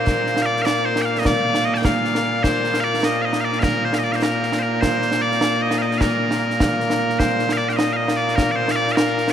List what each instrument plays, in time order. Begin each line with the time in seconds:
Already playing: bagpipes A#2 A#3 C5
0.07 concert bass drum, snare
0.27 snare
0.37 snare
0.42 bagpipes D5 F5
0.57 snare
0.62 bagpipes D5 F5
0.67 snare
0.85 bagpipes C5
0.96 snare
1.02 bagpipes F5 G5
1.15 bagpipes D#5, snare
1.25 bagpipes D5, concert bass drum, snare
1.55 snare
1.65 bagpipes D#5
1.74 bagpipes G5 A5, snare
1.85 bagpipes F5, concert bass drum, snare
2.05 snare
2.15 snare
2.43 bagpipes C5, concert bass drum, snare
2.64 snare
2.74 snare
2.80 bagpipes D5 F5
2.94 snare
3.03 bagpipes D#5, snare
3.22 bagpipes D#5 F5
3.33 snare
3.41 bagpipes D5 F5
3.53 snare
3.59 bagpipes F5, concert bass drum, snare
3.63 bagpipes A#4
3.84 bagpipes C5
3.93 bagpipes F5, snare
3.99 bagpipes D#5
4.04 bagpipes D5
4.12 bagpipes C5 F5, snare
4.22 bagpipes A#4, snare
4.43 snare
4.52 snare
4.59 bagpipes A#4 C5
4.81 bagpipes C5, concert bass drum, snare
5.02 snare
5.12 snare
5.22 bagpipes D5
5.32 snare
5.41 snare
5.62 bagpipes D#5
5.71 snare
5.78 bagpipes D#5 F5
5.91 snare
5.98 bagpipes A#4 F5, concert bass drum, snare
6.31 snare
6.50 snare
6.60 concert bass drum, snare
6.80 snare
6.90 snare
7.10 snare
7.19 bagpipes C5, concert bass drum, snare
7.39 snare
7.49 bagpipes F5, snare
7.57 bagpipes D5
7.69 bagpipes F5 G5, snare
7.77 bagpipes D#5, snare
7.93 bagpipes D#5 F5
8.08 snare
8.17 bagpipes D5
8.28 snare
8.36 bagpipes A#4, concert bass drum, snare
8.51 bagpipes D5
8.56 bagpipes C5
8.68 bagpipes F5, snare
8.76 bagpipes D5
8.88 snare
8.92 bagpipes A#4 F5
8.97 snare
9.18 snare
9.28 snare